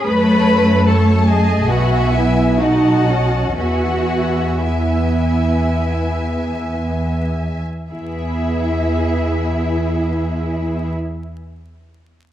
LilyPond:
<<
  \new Staff \with { instrumentName = "Violin section" } { \time 4/4 \key e \major \tempo 4 = 57 b''4 a''8 gis''8 fis''8 e''8 fis''4 | fis''4 e''2 r4 | e''1 | }
  \new Staff \with { instrumentName = "Violin section" } { \time 4/4 \key e \major << { a''4 a''4 gis''4 a''4 | gis''4 gis''2~ gis''8. r16 | <gis' e''>1 | } \\ { cis''4 cis''8 dis''8 e''4 dis''4 | e''4 e''2~ e''8. r16 | r1 | } >> }
  \new Staff \with { instrumentName = "Cello section" } { \time 4/4 \key e \major b'4 a'8 gis'8 fis'8 e'8 fis'4 | fis'4 e'2 r4 | e'1 | }
  \new Staff \with { instrumentName = "Viola section" } { \time 4/4 \key e \major a2 b4 dis'8 cis'8 | b2.~ b8 r8 | <b e'>1 | }
  \new Staff \with { instrumentName = "Double bass section" } { \clef bass \time 4/4 \key e \major fis,2 b,,2 | e,2.~ e,8. r16 | e,1 | }
>>